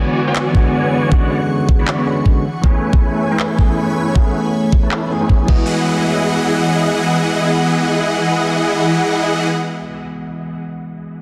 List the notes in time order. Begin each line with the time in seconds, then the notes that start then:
Already playing: D3 E3 G#3 B3 F#4 G#4 C#5 D5 F#5 G#5 C#6
0.27 E3 B3 F#4 C#5 D5 G#5
0.36 clap
0.53 D3 G#3 B3, kick
0.57 F#4
1.10 D3 E3 G#3 B3 C#4 F#4 C#5 D5 F#5, kick
1.69 kick
1.79 E3 B3 F#4 C#5 D5 B5
1.88 clap
2.06 D3 G#3 B3 C#4 F#4
2.26 kick
2.45 A3 C#5 G#5 B5
2.62 E3 A3 B3 C#4 E4 G#4 B4 C#5 G#5, kick
2.93 kick
3.31 A3 E4 B4 C#5 G#5
3.40 clap
3.57 E3 A3 B3 C#4, kick
3.61 G#4
4.14 E3 A3 B3 C#4 E4 B4 C#5 F#5, kick
4.18 G#4
4.72 kick
4.83 A3 E4 B4 C#5 A5
4.91 clap
5.08 E3 A3 B3 C#4
5.12 G#4
5.21 A3 E4 B4 C#5 G#5
5.29 kick
5.45 E3 G#3 B3 E4 G#4 D#5 F#5, kick, crash
5.50 F#4 D#5